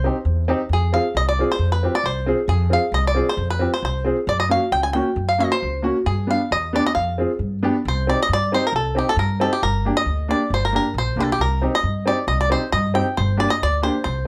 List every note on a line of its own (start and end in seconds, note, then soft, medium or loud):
0.00 0.44 C5 medium
0.04 0.15 C4 medium
0.04 0.15 D#4 medium
0.04 0.16 G4 medium
0.25 0.52 E2 medium
0.48 0.59 C4 medium
0.48 0.59 D#4 medium
0.48 0.60 G4 medium
0.69 0.96 F2 medium
0.69 0.93 G#4 medium
0.93 1.04 C4 medium
0.93 1.04 F4 medium
0.93 1.05 G#4 medium
0.93 1.16 F5 medium
1.15 1.42 C2 medium
1.15 1.27 D#5 medium
1.29 1.50 D5 medium
1.39 1.49 C4 medium
1.39 1.50 F4 medium
1.39 1.50 G#4 medium
1.52 1.72 C5 medium
1.59 1.86 F2 medium
1.72 1.94 B4 medium
1.83 1.94 C4 medium
1.83 1.94 F4 soft
1.83 1.94 G4 medium
1.95 2.06 D5 loud
2.04 2.31 C2 medium
2.04 2.36 C5 medium
2.26 2.38 C4 medium
2.26 2.38 F4 medium
2.26 2.39 G#4 medium
2.48 2.75 F2 loud
2.48 2.72 G#4 medium
2.70 2.82 C4 medium
2.70 2.82 F4 medium
2.70 2.83 G#4 medium
2.70 2.93 F5 medium
2.92 3.19 C2 medium
2.92 3.06 D#5 medium
3.07 3.29 D5 medium
3.15 3.27 C4 medium
3.15 3.27 F4 medium
3.15 3.28 G#4 medium
3.29 3.50 C5 medium
3.37 3.64 F2 loud
3.50 3.73 B4 medium
3.59 3.71 C4 medium
3.59 3.72 F4 medium
3.59 3.72 G4 medium
3.74 3.84 C5 medium
3.83 4.10 C2 medium
3.83 4.15 C5 medium
4.05 4.16 C4 medium
4.05 4.17 F4 soft
4.05 4.17 G#4 medium
4.27 4.54 F#2 loud
4.27 4.39 D5 medium
4.40 4.51 D#5 medium
4.49 4.61 A#3 medium
4.49 4.61 C#4 soft
4.49 4.62 F#4 medium
4.49 4.72 F5 medium
4.72 4.99 C#2 loud
4.72 4.83 G5 medium
4.83 4.93 G#5 loud
4.93 5.06 A#3 medium
4.93 5.06 C#4 medium
4.93 5.07 F#4 medium
4.93 5.28 G5 medium
5.16 5.43 F#2 medium
5.29 5.40 F5 medium
5.38 5.50 A#3 medium
5.38 5.51 C#4 medium
5.38 5.51 F#4 medium
5.38 5.52 D#5 medium
5.52 5.83 C5 medium
5.63 5.89 C#2 medium
5.82 5.95 A#3 medium
5.82 5.95 C#4 medium
5.82 5.95 F#4 medium
6.06 6.33 G2 medium
6.06 6.29 G#4 medium
6.27 6.39 B3 medium
6.27 6.40 D4 medium
6.27 6.40 G4 medium
6.27 6.51 F5 medium
6.51 6.78 E2 medium
6.51 6.72 D#5 loud
6.73 6.84 B3 medium
6.73 6.85 D4 medium
6.73 6.85 G4 medium
6.73 6.85 D5 medium
6.86 6.94 D#5 medium
6.95 7.23 F2 medium
6.95 7.58 F5 medium
7.18 7.29 C4 medium
7.18 7.30 F4 medium
7.18 7.30 G#4 medium
7.39 7.66 G2 medium
7.63 7.74 B3 medium
7.63 7.74 D4 medium
7.63 7.75 G4 medium
7.85 8.12 C2 loud
7.85 8.09 C5 medium
8.07 8.18 C4 medium
8.07 8.19 D#4 soft
8.07 8.19 G4 medium
8.07 8.20 D5 medium
8.23 8.31 D#5 loud
8.29 8.56 G2 medium
8.33 8.54 D5 medium
8.52 8.63 C4 medium
8.52 8.63 D#4 medium
8.52 8.64 G4 medium
8.52 8.64 C5 medium
8.67 8.75 A#4 medium
8.73 9.00 C2 medium
8.73 8.98 A4 medium
8.95 9.07 C4 medium
8.95 9.07 D#4 medium
8.95 9.07 G4 medium
8.95 9.09 G4 medium
9.09 9.19 A4 medium
9.16 9.43 G2 loud
9.16 9.39 A#4 medium
9.40 9.51 C4 medium
9.40 9.52 D#4 medium
9.40 9.52 G4 medium
9.40 9.51 A4 medium
9.53 9.62 G4 medium
9.62 9.89 G1 medium
9.62 9.94 A#4 medium
9.85 9.96 A#3 medium
9.85 9.97 D4 medium
9.85 9.97 G4 medium
9.97 10.27 D#5 loud
10.06 10.32 D2 medium
10.28 10.40 A#3 medium
10.28 10.40 D4 medium
10.28 10.41 G4 medium
10.28 10.53 D5 medium
10.50 10.77 G1 medium
10.50 10.63 C5 medium
10.65 10.74 A#4 medium
10.72 10.84 A#3 medium
10.72 10.84 D4 medium
10.72 10.85 G4 medium
10.72 10.95 A#4 medium
10.94 11.14 A#1 medium
10.98 11.17 C5 medium
11.16 11.37 C2 medium
11.16 11.28 A#3 medium
11.16 11.29 D4 medium
11.16 11.29 G4 medium
11.20 11.29 A4 medium
11.32 11.42 G4 medium
11.39 11.65 C2 medium
11.39 11.71 A#4 medium
11.62 11.73 C4 medium
11.62 11.73 D#4 medium
11.62 11.73 G4 medium
11.75 12.07 D#5 loud
11.83 12.10 G2 medium
12.06 12.17 C4 medium
12.06 12.17 D#4 medium
12.06 12.18 G4 medium
12.06 12.27 D5 medium
12.27 12.54 C2 medium
12.27 12.39 D#5 medium
12.41 12.51 D5 medium
12.50 12.61 C4 medium
12.50 12.61 D#4 medium
12.50 12.62 G4 medium
12.50 12.71 C5 medium
12.72 12.99 G2 loud
12.72 12.95 D#5 loud
12.94 13.05 C4 medium
12.94 13.05 D#4 medium
12.94 13.06 G4 medium
12.94 13.17 G5 medium
13.17 13.44 G1 loud
13.17 13.39 C5 medium
13.37 13.49 A#3 medium
13.37 13.49 D4 medium
13.37 13.49 G4 medium
13.37 13.50 D5 loud
13.50 13.61 D#5 loud
13.62 13.88 D2 medium
13.62 13.83 D5 loud
13.82 13.93 A#3 medium
13.82 13.94 D4 medium
13.82 13.94 G4 medium
13.82 14.03 C5 medium
14.04 14.27 C2 loud
14.04 14.27 C5 medium